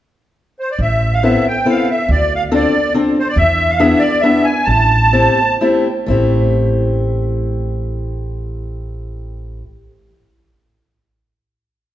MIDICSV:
0, 0, Header, 1, 4, 480
1, 0, Start_track
1, 0, Key_signature, 0, "minor"
1, 0, Tempo, 427960
1, 893, Time_signature, 3, 2, 24, 8
1, 4257, Tempo, 444115
1, 5697, Tempo, 487013
1, 12413, End_track
2, 0, Start_track
2, 0, Title_t, "Accordion"
2, 0, Program_c, 0, 21
2, 669, Note_on_c, 0, 72, 50
2, 784, Note_off_c, 0, 72, 0
2, 797, Note_on_c, 0, 74, 59
2, 894, Note_off_c, 0, 74, 0
2, 913, Note_on_c, 0, 76, 59
2, 1271, Note_on_c, 0, 77, 59
2, 1285, Note_off_c, 0, 76, 0
2, 1383, Note_off_c, 0, 77, 0
2, 1387, Note_on_c, 0, 76, 65
2, 1647, Note_off_c, 0, 76, 0
2, 1662, Note_on_c, 0, 79, 70
2, 1878, Note_off_c, 0, 79, 0
2, 1896, Note_on_c, 0, 77, 58
2, 2117, Note_off_c, 0, 77, 0
2, 2135, Note_on_c, 0, 76, 55
2, 2356, Note_off_c, 0, 76, 0
2, 2365, Note_on_c, 0, 74, 70
2, 2616, Note_off_c, 0, 74, 0
2, 2638, Note_on_c, 0, 77, 75
2, 2729, Note_off_c, 0, 77, 0
2, 2862, Note_on_c, 0, 74, 73
2, 3287, Note_off_c, 0, 74, 0
2, 3582, Note_on_c, 0, 72, 70
2, 3682, Note_off_c, 0, 72, 0
2, 3683, Note_on_c, 0, 74, 58
2, 3788, Note_on_c, 0, 76, 84
2, 3789, Note_off_c, 0, 74, 0
2, 4144, Note_on_c, 0, 77, 66
2, 4162, Note_off_c, 0, 76, 0
2, 4247, Note_on_c, 0, 76, 64
2, 4260, Note_off_c, 0, 77, 0
2, 4466, Note_on_c, 0, 74, 73
2, 4510, Note_off_c, 0, 76, 0
2, 4698, Note_on_c, 0, 76, 67
2, 4713, Note_off_c, 0, 74, 0
2, 4954, Note_on_c, 0, 80, 66
2, 4974, Note_off_c, 0, 76, 0
2, 5170, Note_on_c, 0, 81, 83
2, 5199, Note_off_c, 0, 80, 0
2, 6107, Note_off_c, 0, 81, 0
2, 12413, End_track
3, 0, Start_track
3, 0, Title_t, "Steel-string acoustic guitar"
3, 0, Program_c, 1, 25
3, 1381, Note_on_c, 1, 60, 49
3, 1383, Note_on_c, 1, 59, 59
3, 1386, Note_on_c, 1, 64, 46
3, 1386, Note_on_c, 1, 69, 52
3, 1637, Note_off_c, 1, 59, 0
3, 1637, Note_off_c, 1, 60, 0
3, 1637, Note_off_c, 1, 64, 0
3, 1639, Note_off_c, 1, 69, 0
3, 1851, Note_on_c, 1, 60, 42
3, 1860, Note_on_c, 1, 59, 44
3, 1861, Note_on_c, 1, 69, 60
3, 1863, Note_on_c, 1, 64, 49
3, 2113, Note_off_c, 1, 60, 0
3, 2114, Note_off_c, 1, 64, 0
3, 2115, Note_off_c, 1, 59, 0
3, 2116, Note_off_c, 1, 69, 0
3, 2820, Note_on_c, 1, 60, 56
3, 2821, Note_on_c, 1, 69, 74
3, 2825, Note_on_c, 1, 62, 54
3, 2828, Note_on_c, 1, 65, 56
3, 3075, Note_off_c, 1, 69, 0
3, 3076, Note_off_c, 1, 60, 0
3, 3078, Note_off_c, 1, 62, 0
3, 3078, Note_off_c, 1, 65, 0
3, 3301, Note_on_c, 1, 60, 56
3, 3308, Note_on_c, 1, 62, 41
3, 3309, Note_on_c, 1, 65, 49
3, 3310, Note_on_c, 1, 69, 56
3, 3556, Note_off_c, 1, 60, 0
3, 3558, Note_off_c, 1, 62, 0
3, 3558, Note_off_c, 1, 65, 0
3, 3560, Note_off_c, 1, 69, 0
3, 4256, Note_on_c, 1, 62, 55
3, 4260, Note_on_c, 1, 68, 75
3, 4264, Note_on_c, 1, 64, 50
3, 4265, Note_on_c, 1, 59, 65
3, 4508, Note_off_c, 1, 59, 0
3, 4508, Note_off_c, 1, 62, 0
3, 4508, Note_off_c, 1, 68, 0
3, 4510, Note_off_c, 1, 64, 0
3, 4728, Note_on_c, 1, 68, 46
3, 4729, Note_on_c, 1, 59, 61
3, 4734, Note_on_c, 1, 62, 46
3, 4734, Note_on_c, 1, 64, 48
3, 4981, Note_off_c, 1, 59, 0
3, 4982, Note_off_c, 1, 68, 0
3, 4983, Note_off_c, 1, 64, 0
3, 4985, Note_off_c, 1, 62, 0
3, 5697, Note_on_c, 1, 60, 54
3, 5697, Note_on_c, 1, 67, 64
3, 5698, Note_on_c, 1, 57, 52
3, 5705, Note_on_c, 1, 64, 51
3, 5943, Note_off_c, 1, 60, 0
3, 5943, Note_off_c, 1, 67, 0
3, 5944, Note_off_c, 1, 57, 0
3, 5947, Note_off_c, 1, 64, 0
3, 6170, Note_on_c, 1, 57, 57
3, 6173, Note_on_c, 1, 60, 51
3, 6176, Note_on_c, 1, 64, 53
3, 6180, Note_on_c, 1, 67, 67
3, 6423, Note_off_c, 1, 57, 0
3, 6423, Note_off_c, 1, 60, 0
3, 6424, Note_off_c, 1, 67, 0
3, 6425, Note_off_c, 1, 64, 0
3, 6619, Note_on_c, 1, 57, 53
3, 6638, Note_on_c, 1, 60, 57
3, 6648, Note_on_c, 1, 64, 45
3, 6660, Note_on_c, 1, 67, 61
3, 10102, Note_off_c, 1, 57, 0
3, 10120, Note_off_c, 1, 60, 0
3, 10130, Note_off_c, 1, 64, 0
3, 10142, Note_off_c, 1, 67, 0
3, 12413, End_track
4, 0, Start_track
4, 0, Title_t, "Upright bass"
4, 0, Program_c, 2, 32
4, 882, Note_on_c, 2, 33, 65
4, 1513, Note_off_c, 2, 33, 0
4, 2339, Note_on_c, 2, 38, 76
4, 2962, Note_off_c, 2, 38, 0
4, 3771, Note_on_c, 2, 40, 75
4, 4397, Note_off_c, 2, 40, 0
4, 5204, Note_on_c, 2, 33, 73
4, 5842, Note_off_c, 2, 33, 0
4, 6638, Note_on_c, 2, 33, 71
4, 10121, Note_off_c, 2, 33, 0
4, 12413, End_track
0, 0, End_of_file